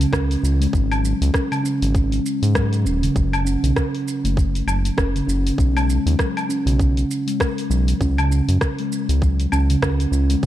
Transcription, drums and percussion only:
0.01 open hi-hat medium
0.01 shaker soft
0.13 kick loud
0.13 cross-stick loud
0.13 shaker soft
0.31 open hi-hat soft
0.31 shaker soft
0.45 shaker medium
0.62 open hi-hat medium
0.62 shaker soft
0.73 kick loud
0.73 shaker soft
0.92 open hi-hat soft
0.92 low woodblock medium
0.92 shaker soft
1.05 shaker medium
1.22 open hi-hat medium
1.22 shaker soft
1.34 kick loud
1.34 cross-stick medium
1.34 shaker soft
1.52 open hi-hat soft
1.52 low woodblock medium
1.52 shaker soft
1.65 shaker medium
1.82 open hi-hat medium
1.82 shaker soft
1.95 kick loud
1.95 shaker soft
2.12 open hi-hat soft
2.12 shaker soft
2.26 shaker medium
2.43 open hi-hat medium
2.43 shaker soft
2.55 kick loud
2.55 cross-stick loud
2.55 shaker soft
2.73 open hi-hat soft
2.73 shaker soft
2.86 shaker medium
3.03 open hi-hat medium
3.03 shaker soft
3.16 kick loud
3.16 shaker soft
3.33 open hi-hat soft
3.33 low woodblock medium
3.33 shaker soft
3.47 shaker medium
3.64 open hi-hat medium
3.64 shaker soft
3.76 kick loud
3.76 cross-stick medium
3.76 shaker soft
3.95 open hi-hat soft
4.08 shaker medium
4.25 open hi-hat medium
4.25 shaker soft
4.37 kick loud
4.37 shaker soft
4.55 open hi-hat soft
4.55 shaker soft
4.68 low woodblock medium
4.68 shaker medium
4.85 open hi-hat medium
4.85 shaker soft
4.98 kick loud
4.98 cross-stick medium
4.98 shaker soft
5.16 open hi-hat soft
5.16 shaker soft
5.29 shaker medium
5.47 open hi-hat medium
5.47 shaker soft
5.58 kick medium
5.58 shaker soft
5.77 open hi-hat soft
5.77 low woodblock medium
5.77 shaker soft
5.90 shaker medium
6.07 open hi-hat medium
6.07 shaker soft
6.19 kick loud
6.19 cross-stick medium
6.19 shaker soft
6.37 open hi-hat soft
6.37 low woodblock medium
6.37 shaker soft
6.50 shaker medium
6.67 open hi-hat medium
6.67 shaker soft
6.79 kick loud
6.79 shaker soft
6.97 open hi-hat soft
6.97 shaker soft
7.11 shaker medium
7.28 open hi-hat medium
7.28 shaker soft
7.40 kick loud
7.40 cross-stick loud
7.40 shaker soft
7.58 open hi-hat soft
7.58 shaker soft
7.71 shaker medium
7.88 open hi-hat medium
7.88 shaker soft
8.01 kick loud
8.01 shaker soft
8.18 open hi-hat soft
8.18 low woodblock medium
8.18 shaker soft
8.32 shaker medium
8.49 open hi-hat medium
8.49 shaker soft
8.61 kick loud
8.61 cross-stick medium
8.61 shaker soft
8.78 open hi-hat soft
8.92 shaker medium
9.09 open hi-hat medium
9.09 shaker soft
9.22 kick loud
9.22 shaker soft
9.40 open hi-hat soft
9.40 shaker soft
9.52 low woodblock medium
9.52 shaker medium
9.70 open hi-hat medium
9.70 shaker soft
9.82 kick loud
9.82 cross-stick loud
9.82 shaker soft
10.00 open hi-hat soft
10.00 shaker soft
10.13 shaker medium
10.30 open hi-hat medium
10.30 shaker soft
10.43 kick loud

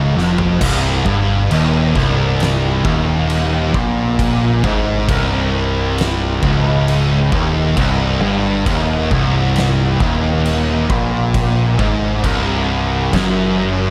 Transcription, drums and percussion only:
0.19 snare medium
0.38 floor tom medium
0.61 kick loud
0.61 crash loud
0.61 crash medium
1.06 kick loud
1.51 crash medium
1.96 kick loud
1.96 snare soft
2.40 snare loud
2.40 crash medium
2.85 kick loud
3.30 crash medium
3.74 kick loud
4.19 kick loud
4.19 crash medium
4.64 kick loud
5.09 kick loud
5.09 crash medium
5.98 snare loud
5.98 crash medium
6.43 kick loud
6.88 crash medium
7.32 kick loud
7.77 kick loud
7.77 crash medium
8.66 kick loud
8.66 crash medium
9.11 kick loud
9.56 snare loud
9.56 crash medium
10.00 kick loud
10.45 crash medium
10.90 kick loud
11.34 kick loud
11.34 crash medium
11.79 kick loud
12.24 kick loud
12.24 crash medium
13.13 kick loud
13.13 snare loud
13.13 crash medium

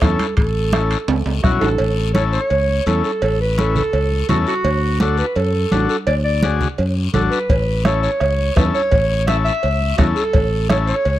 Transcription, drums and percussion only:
0.02 bombo low medium
0.02 bombo rim medium
0.02 high conga medium
0.02 high timbale medium
0.02 low timbale medium
0.02 short guiro medium
0.19 high conga medium
0.19 high timbale medium
0.19 short guiro medium
0.37 bombo low medium
0.37 high conga soft
0.37 high timbale medium
0.37 long guiro medium
0.73 bombo rim medium
0.73 high conga medium
0.73 high timbale medium
0.73 short guiro medium
0.91 high timbale medium
0.91 short guiro medium
1.08 high timbale loud
1.08 long guiro medium
1.26 high conga soft
1.26 high timbale medium
1.44 bombo low medium
1.44 bombo rim medium
1.44 high conga medium
1.44 short guiro medium
1.61 high conga medium
1.61 low timbale loud
1.61 short guiro medium
1.78 cowbell loud
1.78 high conga soft
1.78 long guiro medium
2.15 cowbell medium
2.15 high conga medium
2.15 short guiro medium
2.33 short guiro medium
2.50 cowbell medium
2.50 long guiro medium
2.68 high conga soft
2.86 cowbell medium
2.86 high conga medium
2.86 short guiro medium
3.04 short guiro medium
3.22 cowbell loud
3.22 high conga soft
3.22 long guiro medium
3.58 cowbell medium
3.58 high conga medium
3.58 short guiro medium
3.76 low conga medium
3.76 short guiro medium
3.93 cowbell medium
3.93 long guiro medium
4.11 high conga soft
4.29 cowbell medium
4.29 high conga medium
4.29 low conga medium
4.29 short guiro medium
4.47 short guiro medium
4.64 cowbell loud
4.64 high conga soft
4.64 long guiro medium
5.00 cowbell medium
5.00 high conga medium
5.00 short guiro medium
5.17 short guiro medium
5.36 cowbell medium
5.36 long guiro medium
5.54 high conga soft
5.72 cowbell medium
5.72 high conga medium
5.72 low timbale medium
5.72 short guiro medium
5.89 short guiro medium
6.07 cowbell loud
6.07 high conga soft
6.07 long guiro medium
6.43 cowbell medium
6.43 high conga medium
6.43 short guiro medium
6.61 low conga medium
6.61 short guiro medium
6.78 cowbell medium
6.78 long guiro medium
6.97 high conga soft
7.14 cowbell medium
7.14 high conga medium
7.14 low conga medium
7.14 short guiro medium
7.32 short guiro medium
7.49 bombo low medium
7.49 cowbell loud
7.49 high conga soft
7.49 long guiro medium
7.85 bombo rim medium
7.85 cowbell medium
7.85 high conga medium
7.85 short guiro medium
8.03 short guiro medium
8.20 bombo rim medium
8.20 cowbell medium
8.20 long guiro medium
8.39 high conga soft
8.56 bombo low medium
8.56 bombo rim medium
8.56 cowbell medium
8.56 high conga medium
8.56 low timbale medium
8.56 short guiro medium
8.75 short guiro medium
8.92 bombo low medium
8.92 cowbell loud
8.92 high conga soft
8.92 long guiro medium
9.28 bombo rim medium
9.28 cowbell medium
9.28 high conga medium
9.28 short guiro medium
9.46 short guiro medium
9.63 cowbell medium
9.63 long guiro medium
9.81 high conga soft
9.98 bombo low medium
9.98 bombo rim medium
9.98 cowbell medium
9.98 high conga medium
9.98 low conga medium
9.98 short guiro medium
10.16 short guiro medium
10.33 bombo low medium
10.33 cowbell loud
10.33 high conga soft
10.33 long guiro medium
10.70 bombo rim medium
10.70 cowbell medium
10.70 high conga medium
10.70 short guiro medium
10.87 short guiro medium
11.05 cowbell medium
11.05 long guiro medium

